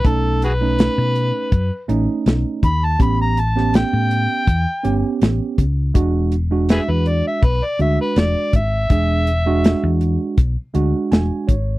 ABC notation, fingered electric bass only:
X:1
M:4/4
L:1/16
Q:1/4=81
K:Emix
V:1 name="Fingered electric bass" clef=bass
B,,,4- B,,, B,,2 z F,, z A,,, z B,,, z ^D,,2 | A,,,4- A,,, A,,2 z E,, z =G,,, z A,,, z C,,2 | E,,,4- E,,, E,,2 z B,,, z D,, z E,,, z G,,,2 | E,,,4- E,,, E,,2 z B,,, z D,, z E,,, z G,,,2 |]